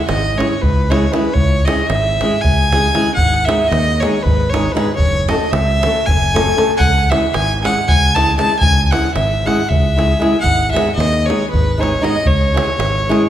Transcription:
0.08 G#1 D#5, davul high
0.36 G#3 C#4 E4 G#4 C#5
0.40 davul high
0.62 C#2 B4, davul low
0.90 G#3 C#4 E4 G#4 C#5, davul high
1.12 G#3 C#4 E4 G#4 B4, davul high
1.25 davul high
1.34 C#2 C#5, davul low
1.65 G#3 C#4 E4 G#4 D#5, davul high
1.78 davul high
1.87 G#1 E5, davul high
2.21 G#3 C#4 E4 G#4, davul high
2.41 C#2 G#5, davul low
2.73 G#3 C#4 E4 G#4, davul high
2.94 G#3 C#4 E4 G#4, davul high
3.06 davul high
3.14 G#1 F#5, davul low
3.34 davul high
3.45 G#3 B3 D#4 E5, davul high
3.49 G#4
3.60 davul high
3.68 D#2 D#5
3.72 davul high
4.00 G#3 B3 D#4 C#5, davul high
4.04 G#4
4.23 G#1 B4, davul low
4.50 G#3 B3 C#5
4.54 D#4 G#4, davul high
4.72 G#3 B3 D#4 B4
4.77 G#4, davul high
4.89 davul high
4.96 F#1 C#5, davul low
5.14 davul high
5.28 A3 C#4 F#4 A4 D#5, davul high
5.41 davul high
5.51 C#2 E5, davul high
5.69 davul high
5.83 A3 C#4 F#4 A4, davul high
5.96 davul high
6.06 F#1 G#5, davul low
6.22 davul high
6.34 A3 C#4 F#4 A4, davul high
6.47 davul high
6.56 A3 C#4 F#4 A4, davul high
6.70 davul high
6.77 C#2 F#5 G#5, davul low
6.98 davul high
7.10 G#3 C#4 E4 G#4 E5, davul high
7.24 davul high
7.34 G#1 G#5, davul high
7.62 G#3 C#4 E4 G#4 F#5 G#5, davul high
7.88 C#2 G#5, davul low
8.15 G#3 C#4 E4 G#4 A5, davul high
8.37 G#3 C#4 E4 G#4 A5, davul high
8.50 davul high
8.59 C#2 G#5, davul low
8.78 davul high
8.86 G#5
8.91 G#3 C#4 E4 G#4 F#5, davul high
9.05 davul high
9.14 G#1 E5, davul high
9.45 G#3 C#4 E4 G#4 F#5, davul high
9.69 C#2 E5, davul low
9.97 G#3 C#4 E4 G#4, davul high
10.20 G#3 C#4 E4 G#4, davul high
10.33 davul high
10.41 G#1 F#5
10.45 davul low
10.71 G#3 B3 D#4 E5
10.75 G#4, davul high
10.88 davul high
10.95 D#2 D#5
11.00 davul high
11.26 G#3 B3 D#4 G#4 C#5, davul high
11.50 G#1 B4, davul low
11.78 G#3 B3 D#4 G#4 C#5
11.83 davul high
12.01 G#3 B3 D#4 G#4 D#5, davul high
12.15 davul high
12.26 C#2 C#5, davul low
12.41 davul high
12.54 G#3 C#4 E4 G#4, davul high
12.70 davul high
12.79 G#1, davul high
12.95 davul high
13.09 G#3 C#4 E4 G#4, davul high

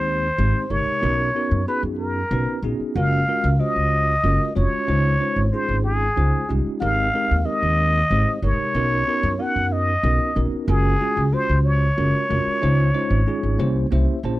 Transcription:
Already playing: D#2 G#3 C4 D#4 G4 C5
0.38 G#1 G#3 C4 D#4 G4 C5
0.70 G1 C3 G#3 D#4 G4 A#4 C#5
1.01 B1 B3 C#4 D#4 F#4 A#4
1.35 B3 C#4 D#4 F#4 A#4
1.51 F#2
1.67 B3 C#4 D#4 F#4 G#4 B4
1.83 F#2
1.99 A#4
2.31 B1 B3 C#4 D#4 F#4 B4
2.62 A#1 B3 C#4 D#4 F#4 G#4
2.80 muted upright bass stroke
2.95 F#1 G#3 C#4 F4 F#4 A#4 F5
3.28 G#3 C#4 F4 F#4 A#4
3.44 C#2
3.59 G#3 C#4 F4 F#4 C5 D#5
3.76 C#2
4.24 F#1 G#3 C#4 F4 F#4 A#4
4.55 F1 G#3 C#4 F4 F#4 C#5
4.87 C#2 G#3 C#4 D#4 F4 C5
5.20 G#3 C#4 D#4 F4 C5
5.36 G#1
5.52 G#3 C#4 D#4 F4 G#4 C5
5.69 G#1
5.84 G#4
6.16 C#2 G#3 C#4 D#4 F4 C5
6.49 C2 G#3 C#4 D#4 F4 G4
6.66 muted upright bass stroke
6.81 G#1 G#3 C4 D#4 G4 A#4 F5
7.14 G#3 C4 D#4 G4 A#4
7.31 D#2
7.45 G#3 C4 D#4 G4 A#4 D#5
7.63 D#2
8.10 G#1 G#3 C4 D#4 G4 C5
8.42 G1 C3 G#3 D#4 G4 A#4 C#5
8.59 muted upright bass stroke
8.75 B1 B3 C#4 D#4 F#4 A#4
9.07 B3 C#4 D#4 F#4 A#4
9.23 F#2
9.39 B3 C#4 D#4 F#4 A#4 F#5
9.56 F#2
9.72 D#5
10.03 B1 B3 C#4 D#4 F#4 A#4
10.35 A#1 B3 C#4 D#4 F#4 A#4
10.52 muted upright bass stroke
10.68 F#1 G#3 C#4 F4 F#4 G#4 A#4
11.01 G#3 C#4 F4 F#4 G#4
11.17 C#2
11.32 G#3 C#4 F4 F#4 C5
11.49 C#2
11.65 C#5
11.97 F#1 G#3 C#4 F4 F#4 A#4
12.29 F1 G#3 C#4 F4 F#4 A#4
12.47 muted upright bass stroke
12.62 C#2 G#3 C#4 D#4 F4 C5
12.94 G#3 C#4 D#4 F4 C5
13.10 G#1
13.27 G#3 C#4 D#4 F4 G#4
13.43 G#1
13.58 C2 A#3 C#4 E4 G4 C5
13.91 C2 A#3 C#4 E4 G4 C5 E5
14.23 A#1 A#3 C#4 E4 G4 C5 A5

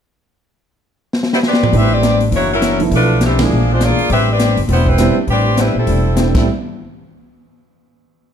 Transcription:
1.13 snare
1.23 snare
1.33 G3 B3 E4 C5, snare
1.43 C4 G4 B4 D5, snare
1.53 snare
1.63 mid tom
1.71 A1 A2 G3 B3 C4 D4 E4 G4, kick, open hi-hat
1.75 C4 B4 E5
1.93 C4 G4 B4 D5
2.02 A2 G3 C4 D4, snare, closed hi-hat
2.20 open hi-hat
2.31 F#1 F#2 E3 A#3 D4 F#4 C#5, kick, open hi-hat
2.35 E4
2.53 F#3 C#4 E4 A#4
2.60 F#2 E3 A#3 D4, snare, closed hi-hat
2.79 F3 A3 B3 D4 E4, open hi-hat
2.91 B1 B2 F3 A3 D4 F4 B4, kick, open hi-hat
3.21 B2 F3 A3 D4, snare, closed hi-hat
3.25 E3 A3 C4 G4
3.39 F3 G#3 A#3 D4 E4 G#4, snare, ride
3.50 A#1 A#2 E3 G#3 D4
3.72 G#3 D4 F4 C5
3.79 A#2 E3 G#3 A#3 D4, snare, closed hi-hat
3.83 F4 G#4 D5
3.98 muted upright bass stroke, open hi-hat
4.09 A1 A2 G3 C4 D4 G4 B4 E5, kick, open hi-hat
4.31 C4 G4 B4 D5
4.37 A2 G3 C4 D4, snare, closed hi-hat
4.57 G1, open hi-hat
4.67 E1 A2 G3 C4 D4, kick, open hi-hat
4.72 G3 B3 E4 C5
4.87 G3 C4 E4 B4, kick
4.97 A2 G3 B3 C4 D4 E4, snare, closed hi-hat
5.16 muted upright bass stroke
5.27 A1 A2 G3 C4 D4 G4 B4 D5, kick, open hi-hat
5.56 A2 G3 C4 D4 B4, snare, closed hi-hat
5.60 E4
5.74 A#1 G3 C4 E4 A4
5.86 E1 A2 G3 C4 D4, kick, open hi-hat
6.15 A2 G3 B3 C4 D4 E4, snare, closed hi-hat
6.34 A1 A2 G3 B3 C4 D4 E4 A4, kick, snare, crash

